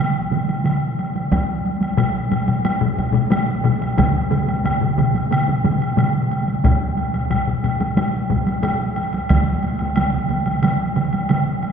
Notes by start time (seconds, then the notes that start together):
0.32 taiko mid, taiko high, high woodblock
0.49 taiko high, high woodblock
0.65 taiko mid, taiko high, high woodblock
0.99 taiko high, high woodblock
1.15 taiko high, high woodblock
1.32 taiko, taiko high, high woodblock
1.65 taiko high, high woodblock
1.81 taiko high, high woodblock
1.98 taiko low-mid, taiko high, high woodblock
2.31 taiko low-mid, taiko high, high woodblock
2.48 taiko low-mid, taiko high, high woodblock
2.65 taiko high, high woodblock
2.81 taiko low-mid
2.98 taiko, taiko high, high woodblock
3.14 taiko low-mid, taiko high, high woodblock
3.30 taiko low-mid, taiko high, high woodblock
3.64 taiko low-mid, taiko high, high woodblock
3.81 taiko high, high woodblock
3.98 taiko, taiko low-mid, taiko mid, taiko high, high woodblock
4.31 taiko low-mid, taiko mid, taiko high, high woodblock
4.48 taiko high, high woodblock
4.64 taiko low-mid, taiko mid, taiko high, high woodblock
4.81 taiko low-mid, taiko mid
4.98 taiko low-mid, taiko mid, taiko high, high woodblock
5.14 taiko high, high woodblock
5.31 taiko low-mid, taiko mid, taiko high, high woodblock
5.48 taiko low-mid, taiko mid
5.64 taiko low-mid, taiko mid, taiko high, high woodblock
5.82 high woodblock
5.97 taiko low-mid, taiko mid, taiko high, high woodblock
6.31 taiko high, high woodblock
6.47 taiko high, high woodblock
6.64 taiko, taiko low-mid, taiko high, high woodblock
6.97 taiko high, high woodblock
7.14 taiko high, high woodblock
7.30 taiko low-mid, taiko high, high woodblock
7.48 taiko low-mid
7.64 taiko low-mid, taiko high, high woodblock
7.80 taiko low-mid, taiko high, high woodblock
7.97 taiko low-mid, taiko high, high woodblock
8.30 taiko, taiko low-mid, taiko high, high woodblock
8.46 taiko high, high woodblock
8.63 taiko low-mid, taiko high, high woodblock
8.96 taiko high, high woodblock
9.13 taiko high, high woodblock
9.29 taiko, taiko mid, taiko high, high woodblock
9.63 taiko high, high woodblock
9.79 taiko high, high woodblock
9.96 taiko mid, taiko high, high woodblock
10.13 taiko mid
10.29 taiko mid, taiko high, high woodblock
10.46 taiko mid, taiko high, high woodblock
10.62 taiko mid, taiko high, high woodblock
10.96 taiko mid, taiko high, high woodblock
11.13 taiko high, high woodblock
11.29 taiko mid, taiko high, high woodblock
11.63 taiko high, high woodblock